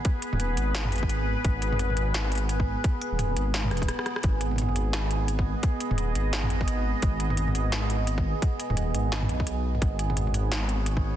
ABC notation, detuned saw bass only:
X:1
M:4/4
L:1/16
Q:"Swing 16ths" 1/4=172
K:G#m
V:1 name="Detuned saw bass" clef=bass
z3 D,,,3 G,,,8- G,,, z | G,,,6 G,,,8- G,,, z | z3 D,,,3 G,,,4 D,,,2 z4 | G,,,6 G,,,8- G,,, z |
z3 D,,,3 G,,,8- G,,, z | G,,,6 G,,,8- G,,, z | z3 D,,,3 G,,,4 B,,,6 | G,,,6 G,,,8- G,,, z |]